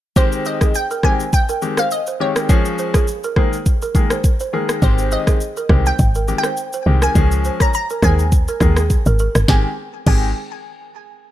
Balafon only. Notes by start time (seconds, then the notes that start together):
0.46 C5
0.62 G#4
0.91 A#4
1.04 C5
1.49 A#4
1.79 C5
2.08 C5
2.37 A#4
2.79 C5
2.95 G#4
3.24 A#4
3.38 C5
3.83 A#4
4.12 C5
4.41 C5
4.54 A#4
5.12 C5
5.28 G#4
5.57 A#4
5.71 C5
6.16 A#4
6.45 C5
6.74 C5
7.03 A#4
7.45 C5
7.61 C#5
7.91 A#4
8.04 C5
8.49 A#4
8.78 G#4
9.07 A#4
9.20 A#4
9.49 G#4
10.07 G#4